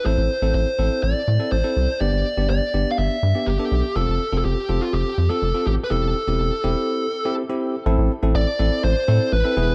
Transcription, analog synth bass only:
\new Staff \with { instrumentName = "Analog synth bass" } { \clef bass \time 4/4 \key a \minor \tempo 4 = 123 a,,16 a,,16 r16 a,,16 a,,16 r16 a,,16 r16 a,,16 r16 a,16 r16 a,,16 r16 c,16 r16 | g,,16 g,,16 r16 g,,16 g,,16 r16 g,,16 r16 g,,16 r16 g,16 r16 g,,16 r16 b,,16 r16 | f,,16 f,,16 r16 f,,16 f,,16 r16 f,,16 r16 f,,16 r16 f,16 r16 f,,16 r16 a,,16 r16 | e,,16 e,,16 r16 e,,16 e,,16 r16 e,,16 r2 r16 |
a,,16 a,,16 r16 a,,16 a,,16 r16 a,,16 r16 a,,16 r16 a,16 r16 a,,16 r16 e,,8 | }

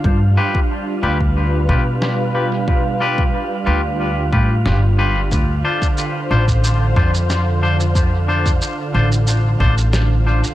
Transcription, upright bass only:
\new Staff \with { instrumentName = "Upright bass" } { \clef bass \time 4/4 \key d \dorian \tempo 4 = 91 g,8 r4 d,4 b,4.~ | b,4 r8 d,4 a,8 g,,4 | d,8 r4 a,,4 f,4.~ | f,4 r8 a,,4 a,,4 r8 | }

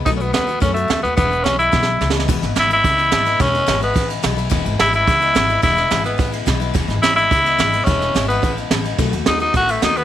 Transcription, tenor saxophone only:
\new Staff \with { instrumentName = "Tenor saxophone" } { \time 4/4 \key e \major \tempo 4 = 215 dis'16. cis'32 b8 b4 cis'8 a4 b8 | b4 cis'8 e'2 r8 | r4 e'8 e'2~ e'8 | cis'4. b4 r4. |
r4 e'8 e'2~ e'8 | e'4. b4 r4. | r4 e'8 e'2~ e'8 | cis'4. b4 r4. |
r4 dis'8 dis'8 fis'8 a8 dis'8 b8 | }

